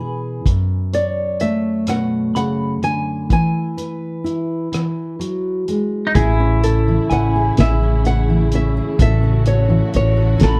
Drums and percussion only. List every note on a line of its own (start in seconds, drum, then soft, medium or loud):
0.46 kick medium
0.46 closed hi-hat soft
0.94 closed hi-hat soft
1.40 closed hi-hat soft
1.87 cross-stick medium
1.87 closed hi-hat soft
2.36 closed hi-hat soft
2.83 closed hi-hat soft
3.30 kick medium
3.30 closed hi-hat soft
3.78 closed hi-hat soft
4.26 closed hi-hat soft
4.73 cross-stick medium
4.73 closed hi-hat soft
5.21 closed hi-hat soft
5.68 closed hi-hat soft
6.15 kick medium
6.15 closed hi-hat medium
6.64 closed hi-hat medium
7.11 closed hi-hat soft
7.57 snare medium
7.57 closed hi-hat medium
8.05 closed hi-hat soft
8.52 closed hi-hat soft
8.99 kick medium
8.99 closed hi-hat medium
9.46 closed hi-hat medium
9.94 closed hi-hat soft
10.40 snare medium
10.40 closed hi-hat medium